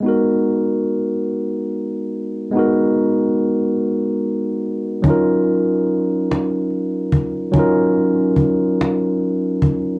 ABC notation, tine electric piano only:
X:1
M:6/8
L:1/8
Q:3/8=48
K:G#dor
V:1 name="Tine electric piano"
[G,B,DFA]6 | [G,B,DFA]6 | [F,CDEA]6 | [F,CDEA]6 |]